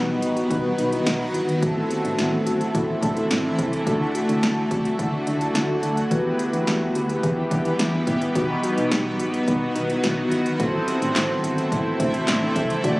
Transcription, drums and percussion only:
0.22 closed hi-hat medium
0.37 closed hi-hat soft
0.51 kick medium
0.51 closed hi-hat medium
0.78 closed hi-hat medium
0.92 closed hi-hat soft
1.06 snare loud
1.06 closed hi-hat medium
1.34 closed hi-hat medium
1.49 closed hi-hat medium
1.63 kick loud
1.63 closed hi-hat medium
1.91 closed hi-hat medium
2.05 closed hi-hat medium
2.19 snare loud
2.19 closed hi-hat medium
2.47 closed hi-hat medium
2.61 closed hi-hat soft
2.75 kick medium
2.75 closed hi-hat medium
3.03 kick medium
3.03 closed hi-hat medium
3.17 closed hi-hat soft
3.31 snare loud
3.31 closed hi-hat medium
3.59 kick medium
3.59 closed hi-hat medium
3.73 closed hi-hat medium
3.87 kick loud
3.87 closed hi-hat medium
4.15 closed hi-hat medium
4.29 closed hi-hat medium
4.43 snare loud
4.43 closed hi-hat medium
4.71 kick loud
4.71 closed hi-hat medium
4.85 closed hi-hat soft
4.99 kick medium
4.99 closed hi-hat medium
5.27 closed hi-hat medium
5.41 closed hi-hat soft
5.55 snare loud
5.55 closed hi-hat medium
5.83 closed hi-hat medium
5.97 closed hi-hat medium
6.11 kick loud
6.11 closed hi-hat medium
6.39 closed hi-hat medium
6.53 closed hi-hat medium
6.67 snare loud
6.67 closed hi-hat medium
6.95 closed hi-hat medium
7.10 closed hi-hat medium
7.23 kick medium
7.23 closed hi-hat medium
7.51 kick medium
7.51 closed hi-hat medium
7.65 closed hi-hat soft
7.79 snare loud
7.79 closed hi-hat medium
8.07 kick medium
8.07 closed hi-hat medium
8.22 closed hi-hat medium
8.35 kick loud
8.35 closed hi-hat medium
8.63 closed hi-hat medium
8.78 closed hi-hat medium
8.91 snare loud
8.91 closed hi-hat medium
9.20 closed hi-hat medium
9.34 closed hi-hat soft
9.48 kick medium
9.48 closed hi-hat medium
9.76 closed hi-hat medium
9.90 closed hi-hat soft
10.04 snare loud
10.04 closed hi-hat medium
10.32 closed hi-hat medium
10.46 closed hi-hat medium
10.60 kick loud
10.60 closed hi-hat medium
10.88 closed hi-hat medium
11.02 closed hi-hat medium
11.16 snare loud
11.16 clap loud
11.16 closed hi-hat medium
11.44 closed hi-hat medium
11.58 closed hi-hat soft
11.72 kick medium
11.72 closed hi-hat medium
12.00 kick medium
12.00 closed hi-hat medium
12.14 closed hi-hat soft
12.28 snare loud
12.28 clap medium
12.28 closed hi-hat medium
12.56 kick medium
12.56 closed hi-hat medium
12.70 closed hi-hat medium
12.84 kick loud
12.84 closed hi-hat medium

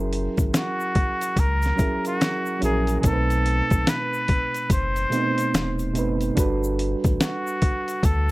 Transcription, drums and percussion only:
0.13 closed hi-hat medium
0.37 kick medium
0.37 closed hi-hat soft
0.37 shaker medium
0.54 snare loud
0.54 closed hi-hat medium
0.54 shaker medium
0.80 shaker soft
0.95 kick medium
0.95 closed hi-hat medium
1.21 closed hi-hat soft
1.21 shaker medium
1.37 kick medium
1.37 closed hi-hat medium
1.37 shaker medium
1.62 snare soft
1.62 closed hi-hat soft
1.62 shaker soft
1.79 kick loud
1.79 closed hi-hat medium
1.79 shaker soft
2.05 closed hi-hat soft
2.05 shaker soft
2.21 snare medium
2.21 closed hi-hat medium
2.21 shaker medium
2.46 shaker soft
2.62 closed hi-hat medium
2.62 shaker soft
2.87 closed hi-hat soft
2.87 shaker soft
3.03 kick loud
3.03 closed hi-hat medium
3.03 shaker medium
3.30 closed hi-hat soft
3.30 shaker medium
3.46 closed hi-hat medium
3.70 kick medium
3.70 closed hi-hat soft
3.70 shaker medium
3.87 snare loud
3.87 closed hi-hat medium
3.87 shaker medium
4.14 shaker soft
4.28 kick medium
4.28 closed hi-hat medium
4.54 closed hi-hat soft
4.54 shaker soft
4.70 kick medium
4.70 closed hi-hat medium
4.70 shaker medium
4.96 closed hi-hat soft
4.96 shaker soft
5.12 closed hi-hat medium
5.12 shaker soft
5.38 closed hi-hat soft
5.38 shaker soft
5.54 snare loud
5.54 closed hi-hat medium
5.54 shaker medium
5.79 closed hi-hat soft
5.79 shaker soft
5.95 closed hi-hat medium
5.95 shaker soft
6.21 closed hi-hat soft
6.21 shaker soft
6.37 kick loud
6.37 closed hi-hat medium
6.37 shaker medium
6.64 shaker medium
6.79 closed hi-hat medium
7.04 kick medium
7.04 closed hi-hat soft
7.04 shaker medium
7.20 snare loud
7.20 closed hi-hat medium
7.20 shaker medium
7.47 shaker soft
7.62 kick medium
7.62 closed hi-hat medium
7.88 closed hi-hat soft
7.88 shaker medium
8.03 kick medium
8.03 closed hi-hat medium
8.03 shaker medium

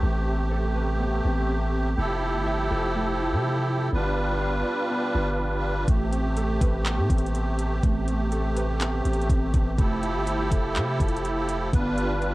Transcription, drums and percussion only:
5.88 kick loud
5.88 closed hi-hat medium
6.13 closed hi-hat medium
6.37 closed hi-hat medium
6.61 kick medium
6.61 closed hi-hat medium
6.86 clap loud
6.86 closed hi-hat medium
7.10 kick medium
7.10 closed hi-hat medium
7.18 closed hi-hat medium
7.26 closed hi-hat soft
7.35 closed hi-hat medium
7.59 closed hi-hat medium
7.83 kick loud
7.83 closed hi-hat medium
8.08 closed hi-hat medium
8.32 closed hi-hat medium
8.56 closed hi-hat medium
8.81 clap loud
8.81 closed hi-hat medium
9.05 closed hi-hat medium
9.13 closed hi-hat medium
9.21 closed hi-hat soft
9.29 kick medium
9.29 closed hi-hat medium
9.54 kick loud
9.54 closed hi-hat medium
9.78 kick loud
9.78 closed hi-hat medium
10.03 closed hi-hat medium
10.27 closed hi-hat medium
10.52 kick medium
10.52 closed hi-hat medium
10.76 clap loud
10.76 closed hi-hat medium
11.00 kick medium
11.00 closed hi-hat medium
11.08 closed hi-hat medium
11.17 closed hi-hat soft
11.25 closed hi-hat medium
11.49 closed hi-hat medium
11.73 kick loud
11.73 closed hi-hat medium
11.98 closed hi-hat medium
12.22 closed hi-hat medium

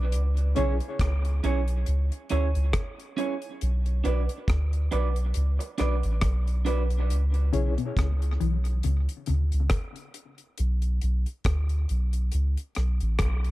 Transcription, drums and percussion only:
0.12 closed hi-hat medium
0.37 closed hi-hat soft
0.56 closed hi-hat medium
0.80 closed hi-hat soft
0.99 kick loud
0.99 cross-stick loud
0.99 closed hi-hat medium
1.25 closed hi-hat medium
1.44 closed hi-hat medium
1.68 closed hi-hat medium
1.86 closed hi-hat medium
2.12 closed hi-hat medium
2.29 closed hi-hat medium
2.55 closed hi-hat medium
2.73 kick loud
2.73 cross-stick loud
2.73 closed hi-hat medium
3.00 closed hi-hat soft
3.18 closed hi-hat medium
3.42 closed hi-hat soft
3.61 closed hi-hat medium
3.86 closed hi-hat soft
4.05 closed hi-hat medium
4.29 closed hi-hat medium
4.48 kick loud
4.48 cross-stick loud
4.48 closed hi-hat medium
4.73 closed hi-hat medium
4.92 closed hi-hat medium
5.16 closed hi-hat medium
5.34 closed hi-hat medium
5.60 closed hi-hat medium
5.78 cross-stick medium
5.78 closed hi-hat medium
6.03 closed hi-hat medium
6.21 kick loud
6.21 cross-stick loud
6.21 closed hi-hat medium
6.47 closed hi-hat soft
6.66 closed hi-hat medium
6.90 closed hi-hat medium
7.10 closed hi-hat medium
7.34 closed hi-hat soft
7.53 closed hi-hat medium
7.78 closed hi-hat medium
7.97 kick loud
7.97 cross-stick loud
7.97 closed hi-hat medium
8.22 closed hi-hat medium
8.41 closed hi-hat medium
8.65 closed hi-hat medium
8.83 closed hi-hat loud
9.09 closed hi-hat medium
9.26 closed hi-hat medium
9.52 closed hi-hat medium
9.70 kick loud
9.70 cross-stick loud
9.70 closed hi-hat medium
9.96 closed hi-hat soft
10.14 closed hi-hat medium
10.38 closed hi-hat medium
10.58 closed hi-hat medium
10.82 closed hi-hat soft
11.02 closed hi-hat medium
11.26 closed hi-hat medium
11.44 kick loud
11.44 cross-stick loud
11.44 closed hi-hat medium
11.69 closed hi-hat medium
11.89 closed hi-hat medium
12.13 closed hi-hat medium
12.32 closed hi-hat medium
12.57 closed hi-hat medium
12.75 cross-stick medium
12.75 closed hi-hat medium
13.00 closed hi-hat medium
13.19 kick loud
13.19 cross-stick loud
13.19 closed hi-hat medium
13.44 closed hi-hat soft

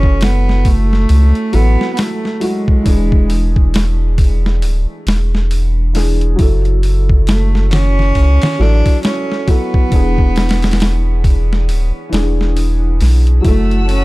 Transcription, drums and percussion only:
0.03 kick medium
0.21 snare loud
0.21 open hi-hat medium
0.49 snare soft
0.65 kick medium
0.65 open hi-hat medium
0.93 snare soft
1.09 open hi-hat medium
1.35 closed hi-hat soft
1.53 open hi-hat medium
1.81 snare soft
1.97 snare loud
1.97 open hi-hat medium
2.25 snare soft
2.41 open hi-hat medium
2.68 kick medium
2.86 kick medium
2.86 open hi-hat medium
3.12 kick medium
3.30 open hi-hat medium
3.56 kick medium
3.74 snare loud
3.74 open hi-hat medium
4.18 kick medium
4.18 open hi-hat medium
4.46 snare soft
4.62 open hi-hat medium
5.07 snare loud
5.07 open hi-hat medium
5.35 snare soft
5.51 open hi-hat medium
5.95 snare soft
5.95 open hi-hat medium
6.21 closed hi-hat soft
6.39 kick loud
6.39 open hi-hat medium
6.65 closed hi-hat soft
6.83 open hi-hat medium
7.09 kick medium
7.27 snare loud
7.27 open hi-hat medium
7.55 snare soft
7.71 snare medium
7.71 open hi-hat medium
7.99 snare soft
8.15 kick medium
8.15 open hi-hat medium
8.42 snare medium
8.42 open hi-hat medium
8.61 snare soft
8.86 kick medium
8.86 open hi-hat medium
9.03 snare loud
9.03 open hi-hat medium
9.32 snare soft
9.48 kick medium
9.48 open hi-hat medium
9.74 kick medium
9.92 kick medium
9.92 open hi-hat medium
10.18 kick medium
10.36 snare medium
10.36 open hi-hat medium
10.49 snare medium
10.49 open hi-hat medium
10.62 snare medium
10.62 open hi-hat medium
10.71 snare medium
10.71 open hi-hat medium
10.80 snare loud
10.80 open hi-hat medium
11.24 kick medium
11.24 open hi-hat medium
11.53 snare soft
11.69 open hi-hat medium
12.13 snare loud
12.13 open hi-hat medium
12.41 snare soft
12.57 open hi-hat medium
13.01 snare soft
13.01 open hi-hat medium
13.27 closed hi-hat soft
13.45 kick loud
13.45 open hi-hat medium
13.71 closed hi-hat soft
13.89 open hi-hat medium

